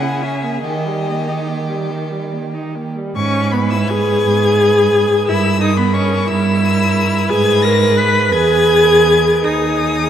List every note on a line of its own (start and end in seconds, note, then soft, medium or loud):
0.00 0.64 C#3 medium
0.00 0.23 E4 medium
0.00 0.65 G#4 medium
0.00 0.24 F#5 medium
0.21 0.45 C#4 medium
0.21 0.63 E5 medium
0.44 0.64 A#3 medium
0.63 2.89 D#3 medium
0.63 0.88 D#3 medium
0.63 2.92 G4 medium
0.63 1.86 D#5 medium
0.86 1.10 G3 medium
1.09 1.29 A#3 medium
1.28 1.50 D#4 medium
1.49 1.70 A#3 medium
1.69 1.92 G3 medium
1.90 2.12 D#3 medium
2.11 2.33 G3 medium
2.32 2.55 A#3 medium
2.54 2.77 D#4 medium
2.75 2.98 A#3 medium
2.96 3.15 G3 medium
3.15 4.12 G#2 medium
3.15 3.55 C#4 loud
3.15 3.53 C#6 loud
3.51 3.73 B3 medium
3.51 4.58 B4 medium
3.51 3.72 B5 medium
3.70 3.91 E4 medium
3.70 3.90 E6 loud
3.88 5.30 G#4 loud
3.88 5.27 G#6 loud
4.25 5.16 G#2 medium
4.60 5.26 B4 medium
5.27 6.16 G2 medium
5.27 5.60 E4 medium
5.27 5.59 A#4 medium
5.27 5.62 E6 loud
5.61 5.77 D#4 medium
5.61 6.59 A#4 medium
5.61 5.78 D#6 loud
5.77 5.94 B3 medium
5.77 5.96 B5 loud
5.94 6.27 C#4 medium
5.94 6.29 C#6 loud
6.28 7.17 G2 medium
6.28 7.31 E4 loud
6.28 7.30 E6 loud
6.61 7.27 A#4 medium
7.28 8.34 G#2 medium
7.28 7.66 G#4 loud
7.28 8.27 B4 medium
7.28 7.64 G#6 loud
7.63 7.98 A#4 loud
7.63 7.99 A#6 loud
7.97 8.33 B4 loud
7.97 8.34 B6 loud
8.30 9.45 E2 medium
8.30 9.43 G#4 loud
8.30 8.85 B4 medium
8.30 9.46 G#6 loud
8.83 9.45 A#4 medium
9.44 10.10 D#2 medium
9.44 10.10 D#4 loud
9.44 10.10 G#4 medium
9.44 10.10 D#6 loud